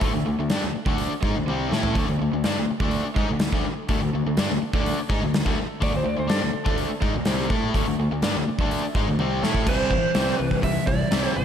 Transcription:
0.01 D2 D3 A3, kick, open hi-hat
0.14 D2 D3 A3
0.26 D2 D3 A3
0.39 D2 D3 A3
0.50 G2 G3 D4, snare, open hi-hat
0.61 D2 D3 A3, snare
0.76 muted fingered electric bass stroke, muted overdriven electric guitar stroke
0.86 D2 D3 A3 D4, kick
0.98 open hi-hat
1.12 muted fingered electric bass stroke, muted overdriven electric guitar stroke
1.23 G#2 G#3 D#4, kick
1.35 D2 D3 A3
1.47 C2 C3 G3 C4, high tom
1.72 A2 A3 E4 A4, snare
1.83 floor tom
1.94 D2 D3 A3, kick, open hi-hat
1.98 A3
2.09 D2 D3 A3
2.21 D2 D3 A3
2.33 D2 D3 A3
2.44 G2 G3 D4, snare, open hi-hat
2.58 D2 D3 A3
2.70 muted fingered electric bass stroke, muted overdriven electric guitar stroke
2.80 D2 D3 A3 D4, kick
2.91 open hi-hat
3.06 muted overdriven electric guitar stroke, muted fingered electric bass stroke
3.16 G#2 G#3 D#4, kick
3.29 D2 D3 A3
3.40 snare, open hi-hat
3.52 D2 D3 A3, kick
3.89 D2 D3 A3, kick, open hi-hat
4.01 D2 D3 A3
4.14 D2 D3 A3
4.26 D2 D3 A3
4.37 G2 G3 D4, snare, open hi-hat
4.50 D2 D3 A3
4.62 muted fingered electric bass stroke, muted overdriven electric guitar stroke
4.73 D2 D3 A3 D4, kick
4.86 open hi-hat
4.98 muted fingered electric bass stroke, muted overdriven electric guitar stroke
5.09 G#2 G#3 D#4, kick
5.21 D2 D3 A3
5.34 snare, open hi-hat
5.45 D2 D3 A3, kick
5.81 D2 D3 A3 D5, kick, open hi-hat
5.93 D2 D3 A3 C5
6.04 D2 D3 A3
6.09 D5
6.17 D2 D3 A3 C5
6.28 G2 G3 D4 A4, snare, open hi-hat
6.41 D2 D3 A3
6.53 muted overdriven electric guitar stroke, muted fingered electric bass stroke
6.65 D2 D3 A3 D4, kick
6.78 open hi-hat
6.91 muted overdriven electric guitar stroke, muted fingered electric bass stroke
7.01 G#2 G#3 D#4, kick
7.14 D2 D3 A3
7.25 C2 C3 G3 C4, snare, open hi-hat
7.50 A2 A3 E4 A4, kick
7.74 D2 D3 A3, kick, open hi-hat
7.87 D2 D3 A3
7.99 D2 D3 A3
8.11 D2 D3 A3
8.22 G2 G3 D4, snare, open hi-hat
8.35 D2 D3 A3
8.48 muted fingered electric bass stroke, muted overdriven electric guitar stroke
8.58 D2 D3 A3 D4, kick
8.71 open hi-hat
8.83 muted fingered electric bass stroke, muted overdriven electric guitar stroke
8.95 G#2 G#3 D#4, kick
9.07 D2 D3 A3
9.18 C2 C3 G3 C4, high tom
9.43 A2 A3 E4 A4, snare
9.55 kick
9.67 C2 C3 E3 G3 C4 C5, kick, crash
9.91 C3 E3 G3, kick
10.14 C2 C3 E3 G3 C4, snare, open hi-hat
10.27 snare
10.35 B4
10.39 C2 C3 E3 G3
10.51 kick
10.62 C2 C3 E3 G3 E5, kick, open hi-hat
10.87 C2 C3 E3 G3 D5, kick
11.11 C2 C3 E3 G3 C4, snare, open hi-hat
11.36 G1 C3 E3 G3 C5

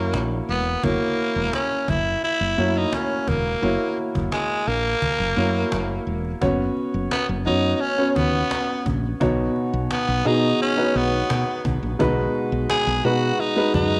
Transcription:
Already playing: F#2 A#3 E4 F#4 C#5
0.14 A#1, cajon slap
0.31 cajon slap
0.49 E1 B3, cajon slap
0.66 cajon slap
0.83 F#1 A#3 E4 F#4 C#5, cajon bass
1.01 cajon slap
1.19 cajon slap
1.36 E1, cajon slap
1.53 C#4, cajon slap
1.71 cajon slap
1.88 F#1 E4, cajon bass
2.06 cajon slap
2.23 E4, cajon slap
2.41 F#1, cajon slap
2.58 F#2 A#3 E4 F#4 C#5, cajon slap
2.75 D#4, cajon slap
2.93 C#4, cajon slap
3.10 cajon slap
3.28 E1 A#3, cajon bass
3.45 cajon slap
3.62 F#1 A#3 E4 F#4 C#5, cajon slap
3.80 cajon slap
3.98 cajon slap
4.15 F#1, cajon bass
4.32 G#3, cajon slap
4.50 cajon slap
4.67 A#1 A#3, cajon slap
4.85 cajon slap
5.02 cajon bass
5.20 F#1, cajon slap
5.36 F#2 A#3 E4 F#4 C#5, cajon slap
5.55 cajon slap
5.72 F#1, cajon slap
5.89 cajon slap
6.07 E1
6.25 cajon slap
6.41 F#1 B3 C#4 F#4 C#5, cajon bass
6.77 cajon slap
6.94 F#1
7.11 B3, cajon slap
7.29 F#1
7.46 F#2 B3 C#4 D#4 F#4 C#5, cajon slap
7.74 D#4
7.81 C#4, cajon slap
7.98 B3 C#4 F#4 C#5
8.10 C#4
8.16 D#2 B3, cajon bass
8.51 cajon slap
8.86 A#1, cajon bass
9.04 cajon slap
9.20 B1 B2 B3 D#4 F#4 C#5, cajon bass
9.56 cajon slap
9.73 B1
9.91 B3, cajon slap
10.08 B1
10.24 B2 B3 D#4 F#4 G#4, cajon slap
10.60 C#4, cajon slap
10.77 B3 D#4 F#4 B4
10.85 C#5
10.95 B1 B3, cajon slap
11.30 B2, cajon slap
11.65 B1, cajon bass
11.83 A#1, cajon slap
11.99 B1 B2 G#3 D#4 F#4 B4, cajon bass
12.35 cajon slap
12.52 B1
12.70 G#4, cajon slap
12.87 B1
13.04 B2 G#3 D#4 F#4 B4, cajon slap
13.39 D#4, cajon slap
13.56 G#3 D#4 F#4 B4
13.74 F#2 D#4, cajon bass

